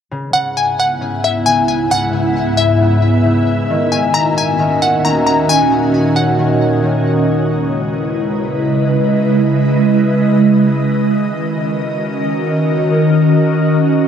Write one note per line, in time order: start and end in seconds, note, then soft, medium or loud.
0.12 3.66 C#2 medium
0.12 3.66 G#2 medium
0.12 0.32 C#3 medium
0.12 3.66 B3 medium
0.12 3.66 E4 medium
0.12 5.45 E5 medium
0.33 1.00 C#3 medium
0.33 0.55 F#5 medium
0.57 0.78 G#5 medium
0.80 1.21 F#5 medium
1.01 1.45 C#3 medium
1.24 1.45 E5 medium
1.46 1.90 C#3 medium
1.46 1.67 G#5 medium
1.68 1.90 G#5 medium
1.91 2.12 C#3 medium
1.91 2.54 F#5 loud
2.13 2.79 C#3 medium
2.57 3.66 E5 medium
2.80 3.24 C#3 medium
3.25 3.75 C#3 medium
3.70 7.24 D#2 medium
3.70 7.24 A#2 medium
3.70 3.91 D#3 medium
3.70 7.24 C#4 medium
3.70 7.24 F#4 medium
3.92 4.58 D#3 medium
3.92 4.13 G#5 medium
4.14 4.36 A#5 medium
4.38 4.79 G#5 medium
4.59 5.03 D#3 medium
4.82 5.03 F#5 medium
5.04 5.48 D#3 medium
5.04 5.25 A#5 medium
5.27 5.48 A#5 medium
5.49 5.70 D#3 medium
5.49 7.26 C#5 medium
5.49 6.12 G#5 loud
5.71 6.37 D#3 medium
6.16 6.79 F#5 medium
6.39 6.82 D#3 medium
6.83 7.33 D#3 medium
7.28 10.83 C#3 medium
7.28 10.83 G#3 medium
7.28 10.83 E4 medium
7.28 10.83 B4 medium
7.28 14.08 D#5 medium
10.86 14.08 D#3 medium
10.86 14.08 C#4 medium
10.86 14.08 F#4 medium
10.86 14.08 A#4 medium